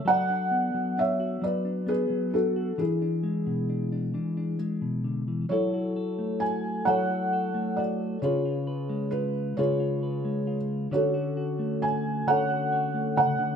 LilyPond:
<<
  \new Staff \with { instrumentName = "Felt piano" } { \time 6/8 \key fis \minor \tempo 4. = 44 << { fis''4 e''8 d''8 b'8 a'8 | gis'2 r4 | cis''4 gis''8 fis''4 d''8 | cis''4 b'8 cis''4 r8 |
cis''4 gis''8 fis''4 fis''8 | } \\ { d''4 cis''8 b'8 gis'8 fis'8 | e'2 r4 | <e' a'>4. <a' cis''>4. | <eis' gis'>4. <eis' gis'>4. |
<fis' a'>4. <a' cis''>4. | } >> }
  \new Staff \with { instrumentName = "Clean electric guitar" } { \time 6/8 \key fis \minor << { a'16 d'8. d'16 fis'8 d'8. d'16 fis'16 | d'16 d'8. d'16 d'16 d'16 d'4~ d'16 | <e' fis' a'>16 fis'16 a'8 fis'8 <e' fis' a'>16 fis'16 a'8 fis'8 | <cis' eis' b'>16 eis'16 b'8 eis'8 <cis' eis' b'>16 eis'16 b'8 eis'8 |
<cis' fis'>16 fis'16 fis'8 fis'8 <cis' fis' cis''>16 fis'16 cis''4 | } \\ { fis8 b16 fis8. fis8 b16 fis8. | e8 gis16 b,8. e8 gis16 b,16 d16 e16 | fis8. a8. fis8. a8. | cis8. gis8. cis8. gis8. |
d8. a8. d8. a16 cis16 d16 | } >> }
>>